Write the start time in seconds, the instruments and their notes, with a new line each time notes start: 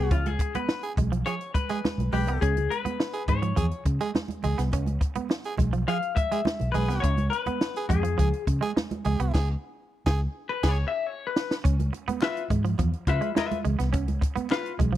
Already playing: fingered electric bass C2, clean electric guitar G#4, tenor saxophone G#4
0.11 fingered electric bass C#2, clean electric guitar C#4 F4, kick, closed hi-hat, muted conga, low conga
0.26 clean electric guitar G#4, closed hi-hat, high conga
0.39 muted clean electric guitar stroke, kick, closed hi-hat
0.55 clean electric guitar B3 B4, muted fingered electric bass stroke, closed hi-hat, high conga
0.69 muted clean electric guitar stroke, snare, muted conga
0.83 tenor saxophone G#4, closed hi-hat
0.97 fingered electric bass B1, clean electric guitar G#3, kick, closed hi-hat, low conga
1.12 clean electric guitar F3, closed hi-hat
1.26 clean electric guitar F3 C#5, tenor saxophone G#4, closed hi-hat
1.41 closed hi-hat
1.54 clean electric guitar B4, muted clean electric guitar stroke, kick, closed hi-hat, high conga
1.70 clean electric guitar G#3, tenor saxophone G#4, closed hi-hat
1.85 muted clean electric guitar stroke, snare, muted conga, high conga
1.98 fingered electric bass B1, closed hi-hat, high conga
2.13 fingered electric bass B1, clean electric guitar G#3 G4, tenor saxophone B4, open hi-hat, low conga
2.27 fingered electric bass C2, clean electric guitar B3, closed hi-hat
2.41 fingered electric bass C#2, clean electric guitar C#4 G#4, kick, closed hi-hat
2.57 closed hi-hat, high conga
2.70 clean electric guitar B4, muted clean electric guitar stroke, closed hi-hat
2.85 clean electric guitar B3, muted fingered electric bass stroke, closed hi-hat, high conga
3.00 muted clean electric guitar stroke, snare, muted conga
3.13 tenor saxophone G#4, closed hi-hat
3.28 fingered electric bass G#2, clean electric guitar G#3 C#5, kick, closed hi-hat, muted conga, low conga
3.42 clean electric guitar F3, closed hi-hat
3.56 fingered electric bass E2, clean electric guitar F3, tenor saxophone G#4, kick, closed hi-hat
3.71 closed hi-hat
3.85 fingered electric bass C#3, muted clean electric guitar stroke, kick, closed hi-hat, muted conga, high conga
4.01 clean electric guitar G#3, tenor saxophone G#4, closed hi-hat
4.15 muted clean electric guitar stroke, snare, muted conga, high conga
4.28 closed hi-hat, high conga
4.43 fingered electric bass C#2, clean electric guitar G#3, tenor saxophone G#4, closed hi-hat, muted conga, low conga
4.58 fingered electric bass C2, clean electric guitar B3, snare, closed hi-hat
4.72 fingered electric bass C#2, clean electric guitar C#4, kick, closed hi-hat, muted conga
4.86 closed hi-hat, high conga
5.01 muted clean electric guitar stroke, kick, closed hi-hat
5.15 clean electric guitar B3, muted fingered electric bass stroke, closed hi-hat, high conga
5.29 muted clean electric guitar stroke, snare, muted conga
5.44 tenor saxophone G#4, closed hi-hat
5.58 fingered electric bass B1, clean electric guitar G#3, kick, closed hi-hat, muted conga, low conga
5.73 clean electric guitar F3, closed hi-hat
5.88 clean electric guitar F3 F5, tenor saxophone G#4, closed hi-hat
6.02 closed hi-hat
6.16 clean electric guitar E5, muted clean electric guitar stroke, kick, closed hi-hat, muted conga, high conga
6.32 clean electric guitar G#3, tenor saxophone G#4, closed hi-hat
6.45 muted clean electric guitar stroke, snare, muted conga, high conga
6.60 fingered electric bass B1, closed hi-hat, high conga
6.72 fingered electric bass B1, clean electric guitar G#3 B4, tenor saxophone G#4, closed hi-hat, low conga
6.88 fingered electric bass C2, clean electric guitar B3, snare, closed hi-hat
7.00 fingered electric bass C#2, clean electric guitar C#4 C#5, kick, closed hi-hat
7.17 closed hi-hat, high conga
7.30 clean electric guitar B4, muted clean electric guitar stroke, closed hi-hat, muted conga
7.46 clean electric guitar B3, muted fingered electric bass stroke, closed hi-hat, high conga
7.61 muted clean electric guitar stroke, snare, muted conga
7.76 tenor saxophone G#4, closed hi-hat
7.89 fingered electric bass F2, clean electric guitar G#3 G#4, kick, closed hi-hat, muted conga, low conga
8.03 clean electric guitar F3, closed hi-hat
8.18 fingered electric bass C#2, clean electric guitar F3, tenor saxophone G#4, kick, closed hi-hat
8.33 closed hi-hat
8.47 fingered electric bass C#3, muted clean electric guitar stroke, kick, closed hi-hat, high conga
8.61 clean electric guitar G#3, tenor saxophone G#4, closed hi-hat
8.76 muted clean electric guitar stroke, snare, high conga
8.91 closed hi-hat, high conga
9.05 fingered electric bass C#2, clean electric guitar G#3, tenor saxophone G#4, closed hi-hat, muted conga, low conga
9.20 fingered electric bass C2, clean electric guitar B3, closed hi-hat
9.34 fingered electric bass C#2, tenor saxophone G#4, kick, snare, crash
10.06 fingered electric bass C#2, tenor saxophone G#4, kick, snare
10.49 clean electric guitar B4
10.63 fingered electric bass C#2, tenor saxophone G#4, kick, snare, crash
10.69 clean electric guitar C#5
10.88 clean electric guitar E5
11.07 clean electric guitar C#5
11.27 clean electric guitar B4
11.36 snare
11.51 snare
11.64 fingered electric bass C#2, clean electric guitar C#4, kick, closed hi-hat
11.80 closed hi-hat, high conga
11.93 muted clean electric guitar stroke, closed hi-hat, muted conga
12.08 clean electric guitar B3, muted fingered electric bass stroke, closed hi-hat, high conga
12.21 clean electric guitar F4 B4 E5, muted clean electric guitar stroke, snare, clap
12.37 closed hi-hat
12.50 fingered electric bass G#2, clean electric guitar G#3, kick, closed hi-hat, muted conga, low conga
12.65 clean electric guitar F3, closed hi-hat
12.78 fingered electric bass E2, clean electric guitar F3, kick, closed hi-hat, muted conga
12.93 closed hi-hat
13.07 fingered electric bass C#3, clean electric guitar F4 B4 E5, muted clean electric guitar stroke, kick, closed hi-hat, muted conga, high conga
13.21 clean electric guitar G#3, closed hi-hat
13.35 clean electric guitar F4 B4 E5, muted clean electric guitar stroke, snare, clap, muted conga, high conga
13.51 closed hi-hat, high conga
13.65 fingered electric bass C#2, clean electric guitar G#3, closed hi-hat, muted conga, low conga
13.79 fingered electric bass C2, clean electric guitar B3, snare, closed hi-hat
13.93 fingered electric bass C#2, clean electric guitar C#4, kick, closed hi-hat, muted conga
14.08 closed hi-hat, high conga
14.21 muted clean electric guitar stroke, kick, closed hi-hat, muted conga
14.36 clean electric guitar B3, muted fingered electric bass stroke, closed hi-hat, high conga
14.50 clean electric guitar F4 B4 F5, muted clean electric guitar stroke, snare, clap
14.66 closed hi-hat
14.79 fingered electric bass B1, clean electric guitar G#3, kick, closed hi-hat, low conga
14.93 clean electric guitar F3